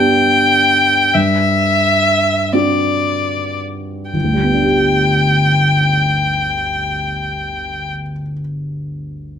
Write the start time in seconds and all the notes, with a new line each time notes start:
Already playing: G2 B3 D4 G4 G5
1.14 G2 E5
2.53 C4 D4 F#4 D5
4.11 G1 G5
4.24 D2
4.34 G3
4.44 B3
4.54 D4
4.64 G4